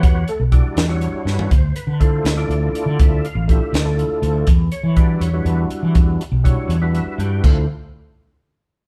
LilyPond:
<<
  \new Staff \with { instrumentName = "Tonewheel organ" } { \time 6/8 \key e \phrygian \tempo 4. = 81 << { <b fis' g' b'>8 <a a'>8 r4. b'8 | c''8 b'8 a'8 r4. | e''8 f''8 e''8 d''8 r4 | r8 cis''8 d''8 cis''8 b'8 r8 |
r2 e''8 g''8 | r2. | } \\ { <cis'' fis''>8 r8 <g d' e' fis' d''>8. <g d' e' fis' cis''>4~ <g d' e' fis' cis''>16 | r4 <a d' e' f' c''>8. <a d' e' f' d''>4~ <a d' e' f' d''>16~ | <a d' e' f' d''>8 r8 <a d' e' f' g'>8. <a d' e' f' a'>4~ <a d' e' f' a'>16 | r4 <g d' e' fis' b'>8. <g d' e' fis' b'>4~ <g d' e' fis' b'>16~ |
<g d' e' fis' b'>8 r8 <g d' e' fis' cis''>8. <g d' e' fis' b'>4~ <g d' e' fis' b'>16 | <a d' e' f' c''>8 r2 r8 | } >> }
  \new Staff \with { instrumentName = "Fretless electric bass" } { \clef bass \time 6/8 \key e \phrygian e,8 r16 b,,8 r16 e,8. r16 g,8 | d,8 r16 d8. d,8 d,8 r16 d16 | d,8 r16 a,,8 r16 d,8. r16 d,8 | e,8 r16 e8. e,8 e,8 r16 e16 |
e,8 r16 b,,8 r16 e,8. r16 g,8 | d,8 r2 r8 | }
  \new DrumStaff \with { instrumentName = "Drums" } \drummode { \time 6/8 <hh bd>8 hh8 <hh bd>8 <hh sn>8 hh8 sn16 tomfh16 | <hh bd>8 hh8 <hh bd>8 <hh sn>8 hh8 hh8 | <hh bd>8 hh8 <hh bd>8 <hh sn>8 hh8 hh8 | <hh bd>8 hh8 <hh bd>8 hh8 hh8 hh8 |
<hh bd>8 hh8 <hh bd>8 hh8 hh8 hh8 | <cymc bd>4. r4. | }
>>